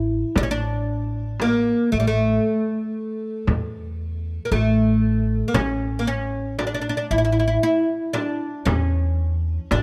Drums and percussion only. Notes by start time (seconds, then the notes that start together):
0.36 frame drum
1.40 frame drum
3.47 frame drum
4.52 frame drum
5.54 frame drum
6.59 frame drum
8.14 frame drum
8.67 frame drum
9.71 frame drum